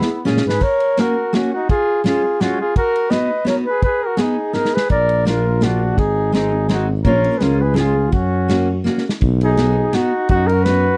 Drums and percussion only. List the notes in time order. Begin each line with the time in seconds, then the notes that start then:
0.02 snare
0.26 snare
0.37 snare
0.49 snare
0.61 kick, crash
0.80 ride
0.97 snare, ride
1.34 snare, ride
1.69 kick, ride
2.06 snare, ride
2.41 snare, ride
2.76 kick, ride
2.96 ride
3.11 snare, ride
3.46 snare, ride
3.82 kick, ride
4.17 snare, ride
4.53 snare
4.65 snare
4.77 snare
4.90 kick, ride
5.09 ride
5.26 snare, ride
5.62 snare, ride
5.98 kick, ride
6.34 snare, ride
6.69 snare, ride
7.05 kick, ride
7.24 ride
7.40 snare, ride
7.76 snare, ride
8.12 kick, ride
8.49 snare, ride
8.85 snare
8.98 snare
9.09 snare
9.21 kick, ride
9.41 ride
9.57 snare, ride
9.93 snare, ride
10.29 kick, ride
10.49 ride
10.66 snare, ride